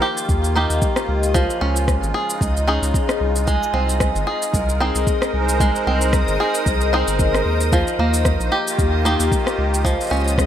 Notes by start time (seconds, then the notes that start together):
Already playing: D#3 F3 A#3 G4 D#5 G5 D#6
0.02 G4
0.13 F4
0.17 shaker
0.29 D#2, kick, shaker
0.44 shaker
0.54 A#3 D#4 G4 D#5
0.70 D#2, shaker
0.82 kick, shaker
0.96 cross-stick, shaker
1.08 C#2 G4
1.23 shaker
1.34 C#3 F3, kick, shaker
1.50 shaker
1.60 C#2 G#3 C#4 G#5
1.76 shaker
1.88 kick, cross-stick, shaker
2.03 G#1, shaker
2.14 G#4
2.30 D#4, shaker
2.41 C#2 D#5, kick, shaker
2.57 shaker
2.67 C#4 D#4 G#4
2.82 C#2, shaker
2.94 G#4, kick, shaker
3.09 cross-stick, shaker
3.21 C2
3.36 shaker
3.47 G#3 G#5, kick, shaker
3.63 shaker
3.73 C2 C4
3.90 shaker
4.00 kick, cross-stick, shaker
4.15 G1, shaker
4.27 G#4 D#5
4.42 shaker
4.54 C2 A#4, kick, shaker
4.69 shaker
4.80 C4 D#4 G#4
4.95 C2, shaker
5.07 kick, shaker
5.22 cross-stick, shaker
5.33 C2 G#5
5.40 C5
5.49 shaker
5.60 G#3, kick, shaker
5.76 shaker
5.87 C2 C4
6.02 shaker
6.13 D#5, kick, cross-stick, shaker
6.28 G1, shaker
6.40 G#4
6.55 shaker
6.66 C2 G#4, kick, shaker
6.81 shaker
6.92 C4 D#4 G#4 C5
7.07 G1, shaker
7.19 A#4, kick, shaker
7.34 cross-stick, shaker
7.45 D#2 G#4
7.61 shaker
7.71 D#3 F3, kick, shaker
7.87 shaker
7.99 D#2 A#3 D#5
8.14 shaker
8.25 kick, cross-stick, shaker
8.40 A#1, shaker
8.46 A#3
8.51 G4
8.68 F4 G4, shaker
8.79 D#2, kick, shaker
9.04 A#3 D#4 G4 G5, shaker
9.20 D#2, shaker
9.32 kick, shaker
9.47 cross-stick, shaker
9.58 C#2
9.74 shaker
9.84 C#3 F3 D#5, kick, shaker
10.01 shaker
10.04 shaker
10.06 shaker
10.09 C#2 C#4, shaker
10.20 G#3, shaker
10.24 shaker
10.28 shaker
10.38 G#4, kick, cross-stick, shaker